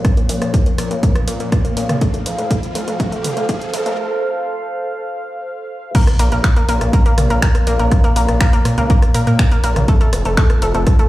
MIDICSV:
0, 0, Header, 1, 8, 480
1, 0, Start_track
1, 0, Key_signature, -5, "minor"
1, 0, Tempo, 491803
1, 46, Time_signature, 4, 2, 24, 8
1, 10822, End_track
2, 0, Start_track
2, 0, Title_t, "Analog synth pad"
2, 0, Program_c, 0, 89
2, 0, Note_on_c, 0, 58, 82
2, 0, Note_on_c, 0, 70, 74
2, 0, Note_on_c, 0, 73, 71
2, 0, Note_on_c, 0, 77, 91
2, 1927, Note_off_c, 0, 58, 0
2, 1927, Note_off_c, 0, 70, 0
2, 1927, Note_off_c, 0, 73, 0
2, 1965, Note_on_c, 0, 72, 75
2, 1966, Note_on_c, 0, 69, 86
2, 5766, Note_off_c, 0, 77, 0
2, 5767, Note_off_c, 0, 69, 0
2, 5767, Note_off_c, 0, 72, 0
2, 5804, Note_on_c, 0, 77, 93
2, 5805, Note_on_c, 0, 58, 83
2, 5805, Note_on_c, 0, 73, 78
2, 5806, Note_on_c, 0, 70, 76
2, 9607, Note_off_c, 0, 58, 0
2, 9607, Note_off_c, 0, 70, 0
2, 9607, Note_off_c, 0, 73, 0
2, 9607, Note_off_c, 0, 77, 0
2, 9644, Note_on_c, 0, 60, 86
2, 9644, Note_on_c, 0, 65, 80
2, 9644, Note_on_c, 0, 69, 93
2, 10822, Note_off_c, 0, 60, 0
2, 10822, Note_off_c, 0, 65, 0
2, 10822, Note_off_c, 0, 69, 0
2, 10822, End_track
3, 0, Start_track
3, 0, Title_t, "Synth arpeggio sound"
3, 0, Program_c, 1, 84
3, 168, Note_on_c, 1, 58, 76
3, 247, Note_off_c, 1, 58, 0
3, 287, Note_on_c, 1, 58, 74
3, 368, Note_off_c, 1, 58, 0
3, 527, Note_on_c, 1, 58, 83
3, 608, Note_off_c, 1, 58, 0
3, 649, Note_on_c, 1, 58, 76
3, 728, Note_off_c, 1, 58, 0
3, 888, Note_on_c, 1, 58, 73
3, 967, Note_off_c, 1, 58, 0
3, 1006, Note_on_c, 1, 58, 83
3, 1088, Note_off_c, 1, 58, 0
3, 1246, Note_on_c, 1, 58, 75
3, 1328, Note_off_c, 1, 58, 0
3, 1368, Note_on_c, 1, 58, 73
3, 1447, Note_off_c, 1, 58, 0
3, 1607, Note_on_c, 1, 58, 76
3, 1687, Note_off_c, 1, 58, 0
3, 1725, Note_on_c, 1, 58, 74
3, 1808, Note_off_c, 1, 58, 0
3, 1966, Note_on_c, 1, 57, 76
3, 2048, Note_off_c, 1, 57, 0
3, 2088, Note_on_c, 1, 57, 73
3, 2168, Note_off_c, 1, 57, 0
3, 2327, Note_on_c, 1, 57, 70
3, 2407, Note_off_c, 1, 57, 0
3, 2446, Note_on_c, 1, 57, 78
3, 2528, Note_off_c, 1, 57, 0
3, 2686, Note_on_c, 1, 57, 70
3, 2768, Note_off_c, 1, 57, 0
3, 2808, Note_on_c, 1, 57, 71
3, 2887, Note_off_c, 1, 57, 0
3, 2926, Note_on_c, 1, 57, 78
3, 3008, Note_off_c, 1, 57, 0
3, 3047, Note_on_c, 1, 57, 76
3, 3127, Note_off_c, 1, 57, 0
3, 3287, Note_on_c, 1, 57, 70
3, 3367, Note_off_c, 1, 57, 0
3, 3406, Note_on_c, 1, 57, 82
3, 3488, Note_off_c, 1, 57, 0
3, 3646, Note_on_c, 1, 57, 71
3, 3728, Note_off_c, 1, 57, 0
3, 3769, Note_on_c, 1, 57, 78
3, 3848, Note_off_c, 1, 57, 0
3, 5806, Note_on_c, 1, 58, 83
3, 5806, Note_on_c, 1, 70, 57
3, 5888, Note_off_c, 1, 58, 0
3, 5888, Note_off_c, 1, 70, 0
3, 6046, Note_on_c, 1, 70, 52
3, 6047, Note_on_c, 1, 58, 76
3, 6128, Note_off_c, 1, 58, 0
3, 6128, Note_off_c, 1, 70, 0
3, 6169, Note_on_c, 1, 58, 77
3, 6169, Note_on_c, 1, 70, 53
3, 6248, Note_off_c, 1, 58, 0
3, 6248, Note_off_c, 1, 70, 0
3, 6409, Note_on_c, 1, 58, 79
3, 6409, Note_on_c, 1, 70, 56
3, 6488, Note_off_c, 1, 58, 0
3, 6488, Note_off_c, 1, 70, 0
3, 6527, Note_on_c, 1, 58, 78
3, 6527, Note_on_c, 1, 70, 55
3, 6608, Note_off_c, 1, 58, 0
3, 6608, Note_off_c, 1, 70, 0
3, 6766, Note_on_c, 1, 58, 84
3, 6766, Note_on_c, 1, 70, 58
3, 6848, Note_off_c, 1, 58, 0
3, 6848, Note_off_c, 1, 70, 0
3, 6888, Note_on_c, 1, 58, 79
3, 6888, Note_on_c, 1, 70, 56
3, 6967, Note_off_c, 1, 58, 0
3, 6968, Note_off_c, 1, 70, 0
3, 7128, Note_on_c, 1, 58, 75
3, 7128, Note_on_c, 1, 70, 51
3, 7207, Note_off_c, 1, 58, 0
3, 7208, Note_off_c, 1, 70, 0
3, 7246, Note_on_c, 1, 58, 84
3, 7246, Note_on_c, 1, 70, 60
3, 7328, Note_off_c, 1, 58, 0
3, 7328, Note_off_c, 1, 70, 0
3, 7486, Note_on_c, 1, 58, 77
3, 7486, Note_on_c, 1, 70, 55
3, 7568, Note_off_c, 1, 58, 0
3, 7568, Note_off_c, 1, 70, 0
3, 7608, Note_on_c, 1, 58, 80
3, 7608, Note_on_c, 1, 70, 55
3, 7687, Note_off_c, 1, 70, 0
3, 7688, Note_off_c, 1, 58, 0
3, 7847, Note_on_c, 1, 58, 78
3, 7848, Note_on_c, 1, 70, 56
3, 7927, Note_off_c, 1, 58, 0
3, 7927, Note_off_c, 1, 70, 0
3, 7966, Note_on_c, 1, 58, 78
3, 7966, Note_on_c, 1, 70, 51
3, 8048, Note_off_c, 1, 58, 0
3, 8048, Note_off_c, 1, 70, 0
3, 8205, Note_on_c, 1, 70, 61
3, 8206, Note_on_c, 1, 58, 88
3, 8288, Note_off_c, 1, 58, 0
3, 8288, Note_off_c, 1, 70, 0
3, 8326, Note_on_c, 1, 58, 79
3, 8327, Note_on_c, 1, 70, 55
3, 8407, Note_off_c, 1, 58, 0
3, 8407, Note_off_c, 1, 70, 0
3, 8567, Note_on_c, 1, 58, 78
3, 8568, Note_on_c, 1, 70, 53
3, 8647, Note_off_c, 1, 58, 0
3, 8647, Note_off_c, 1, 70, 0
3, 8686, Note_on_c, 1, 58, 84
3, 8686, Note_on_c, 1, 70, 61
3, 8768, Note_off_c, 1, 58, 0
3, 8768, Note_off_c, 1, 70, 0
3, 8925, Note_on_c, 1, 58, 77
3, 8925, Note_on_c, 1, 70, 53
3, 9007, Note_off_c, 1, 58, 0
3, 9008, Note_off_c, 1, 70, 0
3, 9048, Note_on_c, 1, 58, 75
3, 9048, Note_on_c, 1, 70, 52
3, 9127, Note_off_c, 1, 58, 0
3, 9127, Note_off_c, 1, 70, 0
3, 9289, Note_on_c, 1, 58, 79
3, 9289, Note_on_c, 1, 70, 53
3, 9368, Note_off_c, 1, 58, 0
3, 9368, Note_off_c, 1, 70, 0
3, 9407, Note_on_c, 1, 58, 78
3, 9407, Note_on_c, 1, 70, 55
3, 9488, Note_off_c, 1, 58, 0
3, 9488, Note_off_c, 1, 70, 0
3, 9646, Note_on_c, 1, 57, 86
3, 9646, Note_on_c, 1, 69, 60
3, 9728, Note_off_c, 1, 57, 0
3, 9728, Note_off_c, 1, 69, 0
3, 9768, Note_on_c, 1, 57, 78
3, 9768, Note_on_c, 1, 69, 55
3, 9847, Note_off_c, 1, 57, 0
3, 9847, Note_off_c, 1, 69, 0
3, 10009, Note_on_c, 1, 57, 75
3, 10009, Note_on_c, 1, 69, 52
3, 10088, Note_off_c, 1, 57, 0
3, 10088, Note_off_c, 1, 69, 0
3, 10126, Note_on_c, 1, 57, 86
3, 10126, Note_on_c, 1, 69, 60
3, 10208, Note_off_c, 1, 57, 0
3, 10208, Note_off_c, 1, 69, 0
3, 10367, Note_on_c, 1, 57, 75
3, 10367, Note_on_c, 1, 69, 55
3, 10448, Note_off_c, 1, 57, 0
3, 10449, Note_off_c, 1, 69, 0
3, 10489, Note_on_c, 1, 57, 79
3, 10489, Note_on_c, 1, 69, 53
3, 10568, Note_off_c, 1, 57, 0
3, 10568, Note_off_c, 1, 69, 0
3, 10728, Note_on_c, 1, 57, 80
3, 10729, Note_on_c, 1, 69, 56
3, 10808, Note_off_c, 1, 57, 0
3, 10808, Note_off_c, 1, 69, 0
3, 10822, End_track
4, 0, Start_track
4, 0, Title_t, "Synth drone"
4, 0, Program_c, 2, 95
4, 0, Note_on_c, 2, 46, 76
4, 0, Note_on_c, 2, 53, 76
4, 3886, Note_off_c, 2, 46, 0
4, 3886, Note_off_c, 2, 53, 0
4, 10822, End_track
5, 0, Start_track
5, 0, Title_t, "Analog synth bass"
5, 0, Program_c, 3, 38
5, 285, Note_on_c, 3, 34, 90
5, 388, Note_off_c, 3, 34, 0
5, 407, Note_on_c, 3, 34, 83
5, 506, Note_off_c, 3, 34, 0
5, 766, Note_on_c, 3, 46, 92
5, 868, Note_off_c, 3, 46, 0
5, 887, Note_on_c, 3, 37, 84
5, 987, Note_off_c, 3, 37, 0
5, 1245, Note_on_c, 3, 46, 93
5, 1348, Note_off_c, 3, 46, 0
5, 1367, Note_on_c, 3, 46, 79
5, 1467, Note_off_c, 3, 46, 0
5, 1726, Note_on_c, 3, 34, 98
5, 1828, Note_off_c, 3, 34, 0
5, 1848, Note_on_c, 3, 34, 82
5, 1947, Note_off_c, 3, 34, 0
5, 2205, Note_on_c, 3, 29, 91
5, 2308, Note_off_c, 3, 29, 0
5, 2327, Note_on_c, 3, 29, 83
5, 2426, Note_off_c, 3, 29, 0
5, 2685, Note_on_c, 3, 29, 94
5, 2788, Note_off_c, 3, 29, 0
5, 2807, Note_on_c, 3, 29, 84
5, 2906, Note_off_c, 3, 29, 0
5, 3165, Note_on_c, 3, 29, 94
5, 3268, Note_off_c, 3, 29, 0
5, 3287, Note_on_c, 3, 29, 79
5, 3387, Note_off_c, 3, 29, 0
5, 3646, Note_on_c, 3, 29, 97
5, 3748, Note_off_c, 3, 29, 0
5, 3767, Note_on_c, 3, 29, 86
5, 3866, Note_off_c, 3, 29, 0
5, 6045, Note_on_c, 3, 34, 94
5, 6148, Note_off_c, 3, 34, 0
5, 6167, Note_on_c, 3, 34, 85
5, 6267, Note_off_c, 3, 34, 0
5, 6525, Note_on_c, 3, 34, 92
5, 6628, Note_off_c, 3, 34, 0
5, 6647, Note_on_c, 3, 34, 84
5, 6747, Note_off_c, 3, 34, 0
5, 7005, Note_on_c, 3, 34, 97
5, 7108, Note_off_c, 3, 34, 0
5, 7127, Note_on_c, 3, 34, 80
5, 7226, Note_off_c, 3, 34, 0
5, 7486, Note_on_c, 3, 34, 94
5, 7588, Note_off_c, 3, 34, 0
5, 7607, Note_on_c, 3, 34, 86
5, 7707, Note_off_c, 3, 34, 0
5, 7965, Note_on_c, 3, 34, 94
5, 8068, Note_off_c, 3, 34, 0
5, 8087, Note_on_c, 3, 34, 82
5, 8187, Note_off_c, 3, 34, 0
5, 8445, Note_on_c, 3, 46, 97
5, 8548, Note_off_c, 3, 46, 0
5, 8568, Note_on_c, 3, 37, 86
5, 8667, Note_off_c, 3, 37, 0
5, 8926, Note_on_c, 3, 46, 98
5, 9028, Note_off_c, 3, 46, 0
5, 9048, Note_on_c, 3, 46, 81
5, 9147, Note_off_c, 3, 46, 0
5, 9405, Note_on_c, 3, 34, 97
5, 9508, Note_off_c, 3, 34, 0
5, 9528, Note_on_c, 3, 34, 85
5, 9627, Note_off_c, 3, 34, 0
5, 9885, Note_on_c, 3, 29, 94
5, 9988, Note_off_c, 3, 29, 0
5, 10008, Note_on_c, 3, 29, 84
5, 10107, Note_off_c, 3, 29, 0
5, 10366, Note_on_c, 3, 29, 96
5, 10468, Note_off_c, 3, 29, 0
5, 10488, Note_on_c, 3, 29, 88
5, 10587, Note_off_c, 3, 29, 0
5, 10822, End_track
6, 0, Start_track
6, 0, Title_t, "Impact"
6, 0, Program_c, 4, 103
6, 5805, Note_on_c, 4, 60, 78
6, 7726, Note_off_c, 4, 60, 0
6, 10822, End_track
7, 0, Start_track
7, 0, Title_t, "Riser"
7, 0, Program_c, 5, 103
7, 0, Note_on_c, 5, 60, 81
7, 3885, Note_off_c, 5, 60, 0
7, 10822, End_track
8, 0, Start_track
8, 0, Title_t, "Drums"
8, 45, Note_on_c, 9, 36, 116
8, 45, Note_on_c, 9, 37, 52
8, 45, Note_on_c, 9, 42, 79
8, 143, Note_off_c, 9, 36, 0
8, 143, Note_off_c, 9, 37, 0
8, 143, Note_off_c, 9, 42, 0
8, 168, Note_on_c, 9, 42, 42
8, 265, Note_off_c, 9, 42, 0
8, 285, Note_on_c, 9, 46, 106
8, 383, Note_off_c, 9, 46, 0
8, 407, Note_on_c, 9, 37, 50
8, 407, Note_on_c, 9, 42, 44
8, 505, Note_off_c, 9, 37, 0
8, 505, Note_off_c, 9, 42, 0
8, 525, Note_on_c, 9, 36, 118
8, 525, Note_on_c, 9, 42, 78
8, 623, Note_off_c, 9, 36, 0
8, 623, Note_off_c, 9, 42, 0
8, 647, Note_on_c, 9, 42, 45
8, 744, Note_off_c, 9, 42, 0
8, 765, Note_on_c, 9, 37, 50
8, 765, Note_on_c, 9, 46, 105
8, 863, Note_off_c, 9, 37, 0
8, 863, Note_off_c, 9, 46, 0
8, 887, Note_on_c, 9, 42, 43
8, 985, Note_off_c, 9, 42, 0
8, 1006, Note_on_c, 9, 36, 122
8, 1006, Note_on_c, 9, 42, 78
8, 1103, Note_off_c, 9, 36, 0
8, 1103, Note_off_c, 9, 42, 0
8, 1127, Note_on_c, 9, 37, 51
8, 1127, Note_on_c, 9, 42, 43
8, 1225, Note_off_c, 9, 37, 0
8, 1225, Note_off_c, 9, 42, 0
8, 1245, Note_on_c, 9, 46, 103
8, 1343, Note_off_c, 9, 46, 0
8, 1368, Note_on_c, 9, 42, 44
8, 1465, Note_off_c, 9, 42, 0
8, 1486, Note_on_c, 9, 36, 112
8, 1486, Note_on_c, 9, 37, 51
8, 1486, Note_on_c, 9, 42, 78
8, 1583, Note_off_c, 9, 36, 0
8, 1584, Note_off_c, 9, 37, 0
8, 1584, Note_off_c, 9, 42, 0
8, 1608, Note_on_c, 9, 42, 44
8, 1706, Note_off_c, 9, 42, 0
8, 1726, Note_on_c, 9, 46, 106
8, 1824, Note_off_c, 9, 46, 0
8, 1848, Note_on_c, 9, 37, 50
8, 1848, Note_on_c, 9, 42, 44
8, 1848, Note_on_c, 9, 45, 73
8, 1946, Note_off_c, 9, 37, 0
8, 1946, Note_off_c, 9, 42, 0
8, 1946, Note_off_c, 9, 45, 0
8, 1965, Note_on_c, 9, 42, 75
8, 1966, Note_on_c, 9, 36, 99
8, 2063, Note_off_c, 9, 42, 0
8, 2064, Note_off_c, 9, 36, 0
8, 2087, Note_on_c, 9, 42, 42
8, 2185, Note_off_c, 9, 42, 0
8, 2206, Note_on_c, 9, 46, 105
8, 2303, Note_off_c, 9, 46, 0
8, 2328, Note_on_c, 9, 42, 44
8, 2426, Note_off_c, 9, 42, 0
8, 2446, Note_on_c, 9, 36, 107
8, 2446, Note_on_c, 9, 42, 77
8, 2543, Note_off_c, 9, 42, 0
8, 2544, Note_off_c, 9, 36, 0
8, 2568, Note_on_c, 9, 42, 41
8, 2666, Note_off_c, 9, 42, 0
8, 2686, Note_on_c, 9, 46, 108
8, 2784, Note_off_c, 9, 46, 0
8, 2808, Note_on_c, 9, 42, 44
8, 2906, Note_off_c, 9, 42, 0
8, 2926, Note_on_c, 9, 36, 104
8, 2927, Note_on_c, 9, 42, 76
8, 3024, Note_off_c, 9, 36, 0
8, 3024, Note_off_c, 9, 42, 0
8, 3049, Note_on_c, 9, 42, 42
8, 3146, Note_off_c, 9, 42, 0
8, 3167, Note_on_c, 9, 45, 76
8, 3167, Note_on_c, 9, 46, 106
8, 3264, Note_off_c, 9, 45, 0
8, 3264, Note_off_c, 9, 46, 0
8, 3288, Note_on_c, 9, 42, 44
8, 3386, Note_off_c, 9, 42, 0
8, 3405, Note_on_c, 9, 42, 75
8, 3406, Note_on_c, 9, 36, 101
8, 3503, Note_off_c, 9, 42, 0
8, 3504, Note_off_c, 9, 36, 0
8, 3528, Note_on_c, 9, 42, 43
8, 3625, Note_off_c, 9, 42, 0
8, 3646, Note_on_c, 9, 46, 109
8, 3743, Note_off_c, 9, 46, 0
8, 3767, Note_on_c, 9, 42, 41
8, 3865, Note_off_c, 9, 42, 0
8, 5805, Note_on_c, 9, 42, 80
8, 5805, Note_on_c, 9, 49, 106
8, 5806, Note_on_c, 9, 36, 113
8, 5903, Note_off_c, 9, 42, 0
8, 5903, Note_off_c, 9, 49, 0
8, 5904, Note_off_c, 9, 36, 0
8, 5927, Note_on_c, 9, 37, 51
8, 5927, Note_on_c, 9, 42, 45
8, 6025, Note_off_c, 9, 37, 0
8, 6025, Note_off_c, 9, 42, 0
8, 6045, Note_on_c, 9, 46, 108
8, 6142, Note_off_c, 9, 46, 0
8, 6167, Note_on_c, 9, 42, 44
8, 6265, Note_off_c, 9, 42, 0
8, 6286, Note_on_c, 9, 26, 127
8, 6286, Note_on_c, 9, 36, 125
8, 6286, Note_on_c, 9, 37, 53
8, 6286, Note_on_c, 9, 42, 85
8, 6383, Note_off_c, 9, 26, 0
8, 6383, Note_off_c, 9, 37, 0
8, 6383, Note_off_c, 9, 42, 0
8, 6384, Note_off_c, 9, 36, 0
8, 6407, Note_on_c, 9, 42, 48
8, 6505, Note_off_c, 9, 42, 0
8, 6526, Note_on_c, 9, 46, 108
8, 6623, Note_off_c, 9, 46, 0
8, 6648, Note_on_c, 9, 37, 49
8, 6648, Note_on_c, 9, 42, 45
8, 6746, Note_off_c, 9, 37, 0
8, 6746, Note_off_c, 9, 42, 0
8, 6766, Note_on_c, 9, 36, 122
8, 6766, Note_on_c, 9, 42, 83
8, 6863, Note_off_c, 9, 36, 0
8, 6864, Note_off_c, 9, 42, 0
8, 6888, Note_on_c, 9, 42, 46
8, 6986, Note_off_c, 9, 42, 0
8, 7006, Note_on_c, 9, 37, 49
8, 7006, Note_on_c, 9, 45, 77
8, 7006, Note_on_c, 9, 46, 105
8, 7103, Note_off_c, 9, 37, 0
8, 7103, Note_off_c, 9, 45, 0
8, 7103, Note_off_c, 9, 46, 0
8, 7128, Note_on_c, 9, 42, 48
8, 7225, Note_off_c, 9, 42, 0
8, 7246, Note_on_c, 9, 26, 123
8, 7246, Note_on_c, 9, 36, 119
8, 7246, Note_on_c, 9, 42, 80
8, 7343, Note_off_c, 9, 36, 0
8, 7344, Note_off_c, 9, 26, 0
8, 7344, Note_off_c, 9, 42, 0
8, 7367, Note_on_c, 9, 37, 50
8, 7367, Note_on_c, 9, 42, 48
8, 7465, Note_off_c, 9, 37, 0
8, 7465, Note_off_c, 9, 42, 0
8, 7485, Note_on_c, 9, 46, 110
8, 7583, Note_off_c, 9, 46, 0
8, 7608, Note_on_c, 9, 42, 46
8, 7705, Note_off_c, 9, 42, 0
8, 7725, Note_on_c, 9, 37, 53
8, 7725, Note_on_c, 9, 42, 81
8, 7726, Note_on_c, 9, 36, 119
8, 7823, Note_off_c, 9, 36, 0
8, 7823, Note_off_c, 9, 37, 0
8, 7823, Note_off_c, 9, 42, 0
8, 7847, Note_on_c, 9, 42, 44
8, 7945, Note_off_c, 9, 42, 0
8, 7965, Note_on_c, 9, 46, 108
8, 8063, Note_off_c, 9, 46, 0
8, 8086, Note_on_c, 9, 37, 53
8, 8086, Note_on_c, 9, 42, 44
8, 8184, Note_off_c, 9, 37, 0
8, 8184, Note_off_c, 9, 42, 0
8, 8204, Note_on_c, 9, 26, 127
8, 8204, Note_on_c, 9, 42, 82
8, 8206, Note_on_c, 9, 36, 127
8, 8302, Note_off_c, 9, 26, 0
8, 8302, Note_off_c, 9, 42, 0
8, 8303, Note_off_c, 9, 36, 0
8, 8327, Note_on_c, 9, 42, 48
8, 8424, Note_off_c, 9, 42, 0
8, 8445, Note_on_c, 9, 37, 54
8, 8445, Note_on_c, 9, 46, 111
8, 8542, Note_off_c, 9, 37, 0
8, 8542, Note_off_c, 9, 46, 0
8, 8567, Note_on_c, 9, 42, 47
8, 8665, Note_off_c, 9, 42, 0
8, 8685, Note_on_c, 9, 42, 80
8, 8686, Note_on_c, 9, 36, 126
8, 8783, Note_off_c, 9, 36, 0
8, 8783, Note_off_c, 9, 42, 0
8, 8807, Note_on_c, 9, 37, 50
8, 8807, Note_on_c, 9, 42, 45
8, 8905, Note_off_c, 9, 37, 0
8, 8905, Note_off_c, 9, 42, 0
8, 8925, Note_on_c, 9, 46, 113
8, 9023, Note_off_c, 9, 46, 0
8, 9048, Note_on_c, 9, 42, 47
8, 9146, Note_off_c, 9, 42, 0
8, 9166, Note_on_c, 9, 26, 124
8, 9166, Note_on_c, 9, 36, 121
8, 9166, Note_on_c, 9, 37, 51
8, 9166, Note_on_c, 9, 42, 82
8, 9263, Note_off_c, 9, 36, 0
8, 9264, Note_off_c, 9, 26, 0
8, 9264, Note_off_c, 9, 37, 0
8, 9264, Note_off_c, 9, 42, 0
8, 9287, Note_on_c, 9, 42, 46
8, 9385, Note_off_c, 9, 42, 0
8, 9405, Note_on_c, 9, 46, 113
8, 9503, Note_off_c, 9, 46, 0
8, 9527, Note_on_c, 9, 37, 53
8, 9527, Note_on_c, 9, 42, 44
8, 9527, Note_on_c, 9, 45, 74
8, 9625, Note_off_c, 9, 37, 0
8, 9625, Note_off_c, 9, 42, 0
8, 9625, Note_off_c, 9, 45, 0
8, 9645, Note_on_c, 9, 42, 79
8, 9646, Note_on_c, 9, 36, 118
8, 9743, Note_off_c, 9, 36, 0
8, 9743, Note_off_c, 9, 42, 0
8, 9767, Note_on_c, 9, 42, 43
8, 9864, Note_off_c, 9, 42, 0
8, 9885, Note_on_c, 9, 37, 55
8, 9885, Note_on_c, 9, 46, 116
8, 9983, Note_off_c, 9, 37, 0
8, 9983, Note_off_c, 9, 46, 0
8, 10007, Note_on_c, 9, 42, 43
8, 10104, Note_off_c, 9, 42, 0
8, 10125, Note_on_c, 9, 26, 126
8, 10125, Note_on_c, 9, 42, 79
8, 10126, Note_on_c, 9, 36, 127
8, 10222, Note_off_c, 9, 26, 0
8, 10222, Note_off_c, 9, 42, 0
8, 10224, Note_off_c, 9, 36, 0
8, 10247, Note_on_c, 9, 37, 55
8, 10247, Note_on_c, 9, 42, 44
8, 10344, Note_off_c, 9, 37, 0
8, 10344, Note_off_c, 9, 42, 0
8, 10365, Note_on_c, 9, 46, 108
8, 10463, Note_off_c, 9, 46, 0
8, 10487, Note_on_c, 9, 42, 44
8, 10585, Note_off_c, 9, 42, 0
8, 10605, Note_on_c, 9, 37, 56
8, 10605, Note_on_c, 9, 42, 77
8, 10606, Note_on_c, 9, 36, 127
8, 10703, Note_off_c, 9, 37, 0
8, 10703, Note_off_c, 9, 42, 0
8, 10704, Note_off_c, 9, 36, 0
8, 10727, Note_on_c, 9, 42, 43
8, 10822, Note_off_c, 9, 42, 0
8, 10822, End_track
0, 0, End_of_file